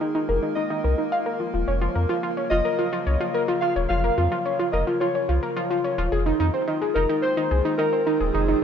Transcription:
Already playing: D#3 G#3 A#3 F4 G#4 A#4
0.01 D#4
0.15 D#4
0.29 F1 A#4
0.43 D#4
0.55 D#4 D#5
0.70 D#4
0.84 C2 A#4
0.98 D#4
1.12 F5
1.26 A#4
1.40 F4
1.54 D#1 F4
1.68 F1 C#3 C#5
1.81 F#3 F4
1.95 F2 A#4
2.09 F4
2.23 F4
2.37 C#5
2.50 F1 F4 D#5
2.65 A#4
2.79 F4
2.93 F4
3.07 C2 C#5
3.21 F4
3.34 A#4
3.48 F4
3.61 F4 F5
3.76 D#1 C#5
3.89 F1 F4 F5
4.04 A#4
4.18 F2 F4
4.32 F4
4.46 C#5
4.59 F4
4.72 F1 A#4 D#5
4.87 F4
5.00 F4 C#5
5.15 C#5
5.29 C2 F4
5.43 A#4
5.57 F4
5.71 F4
5.84 C#5
5.98 D#1 F4
6.12 F1 D#3 G#4
6.25 G#3 D#4
6.40 F2 D#4
6.54 C5
6.68 D#4
6.82 G#4
6.94 F1 D#4 A#4 C5
7.08 C4 D#4
7.22 C5
7.37 D#4
7.51 C2 G#4
7.65 D#4
7.78 D#4 A#4
7.93 C5
8.07 D#4
8.20 D#1 G#4
8.33 F1 D#4 G#4
8.48 D#4

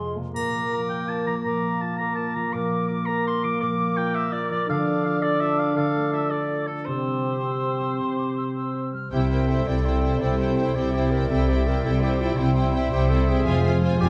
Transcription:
Already playing: F2 C3 G#3 G#4 C6
0.00 F4
0.16 C3 A#3
0.33 A#2 A#3 A#4 A#5 D6, triangle
0.54 F3
0.72 F4 A#5
0.89 A#4 G5
1.08 F4 A5
1.26 F3 A#5
1.44 A#2 A#4 A#5 D6
1.63 A#3
1.81 F4 A5
1.97 A#4 A#5 D6
2.02 A#4
2.15 F4 A5
2.35 F3 A#5
2.53 A#2 A#4 D6
2.72 A#3
2.88 F4 D6
3.06 A#4 A#5 D6
3.27 F4 C6
3.44 F3 D6
3.61 A#2 A#4 D6
3.79 A#3
3.97 F4 G5
4.15 A#4 E5
4.32 F4 D5
4.51 F3 D5
4.68 D3 D4 A4 F5 D6
4.87 D4
5.05 F4 F5
5.21 A4 D5 D6
5.40 F4 E5
5.59 D4 F5
5.75 D3 A4 F5 D6
5.95 A3
6.13 F4 E5
6.31 A4 D5 D6
6.50 F4
6.67 D4 A4
6.85 C3 C4 G4 C5 E6
7.06 G3
7.25 G4
7.44 C5 E6
7.63 G4
7.82 G3 E6
8.00 C3 C6
8.19 C4 D6
8.38 G4 E6
8.56 C5 E6
8.74 G4
8.93 G3 F6
9.10 C2 C3 G3 E4 G4 C5 E5 G5
9.30 C4 E4 A#4 C5 G5
9.48 E4 G4 A4 C5 G5
9.66 C2 C3 E4 C5 D5 E5 G5
9.84 E4 G4 C5 G5
10.02 C4 E4 C5 G5
10.20 C2 C3 G3 E4 C5 D5 G5
10.37 C4 E4 C5 G5
10.56 E4 G4 C5 G5
10.75 C2 C3 E4 G4 C5 D5 E5 G5
10.93 E4 G4 C5 G5
11.11 C4 E4 A#4 C5 G5
11.30 C2 C3 E4 A4 C5 E5 G5
11.48 G3 E4 G4 C5 G5
11.66 E4 G4 A#4 C5 G5
11.84 C2 C3 E4 A4 C5 E5 G5
12.02 E4 G4 C5 G5
12.20 C4 E4 F4 C5 G5
12.37 C2 C3 G3 E4 C5 G5
12.55 C4 E4 C5 G5
12.73 E4 G4 C5 E5 G5
12.91 C2 C3 E4 G4 C5 E5 G5
13.09 E4 G4 A4 C5 G5
13.28 C4 E4 G#4 C5 G5
13.44 F1 F2 F3 G#3 F4 C5 G#5
13.63 C4 F4 C5 G#5
13.81 F4 G#4 C5 G#5
13.98 F1 F2 F4 G4 C5 D5 G5 G#5

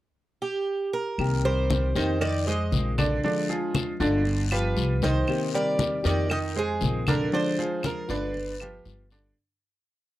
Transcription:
0.42 G4
0.93 A#4
1.18 C2 C3 D#3 A#3 C4 G4, high conga, long guiro, claves
1.45 G3 G4 A#4 C5, high conga
1.70 high conga, short guiro
1.95 F2 D#3 A#3 C4 D#4 G4 C5 D#5, high conga, short guiro
2.21 D#3 D#4 D5 D#5, muted nylon-string guitar stroke, high conga, long guiro, claves
2.47 G#3 G#4 C5 D#5, high conga
2.72 A#1 D#3 G#3 C4 F4, high conga, short guiro
2.98 D3 D4 D5, high conga, short guiro, claves
3.23 D3 F3 G#3 D4 F4 D5, high conga, long guiro
3.49 F3 F4 G#4, high conga
3.75 high conga, short guiro, claves
4.00 G1 D3 G#3 D4 F4 D5, high conga, short guiro
4.25 muted nylon-string guitar stroke, high conga, long guiro
4.51 F3 F4 G4 B4, high conga, claves
4.76 C2 G3 B3 F4, high conga, short guiro
5.02 D#3 D#4 C5 D#5, high conga, short guiro
5.27 C3 D#3 A#3 C4 G4, high conga, long guiro, claves
5.54 G3 G4 A#4 D5, high conga
5.79 high conga, short guiro
6.04 F2 D#3 A#3 C4 D#4 G4 D5 D#5, high conga, short guiro
6.29 D#3 D#4 D#5, muted nylon-string guitar stroke, high conga, long guiro, claves
6.56 G#3 G#4 C5, high conga
6.81 A#1 D#3 G#3 C4 F4, high conga, short guiro
7.07 D3 D4 A#4 D5, high conga, short guiro, claves
7.32 D3 F3 G#3 D4 F4 C5 D5, high conga, long guiro
7.59 F3 F4 G#4, high conga
7.83 A#4, high conga, short guiro, claves
8.08 G1 D3 G#3 D4 F4 B4 D5, high conga, short guiro
8.34 muted nylon-string guitar stroke, high conga, long guiro
8.60 F3 F4 G4, high conga, claves
8.85 G1 G3 B3 F4, high conga, short guiro
9.10 D3 D4 D5, short guiro

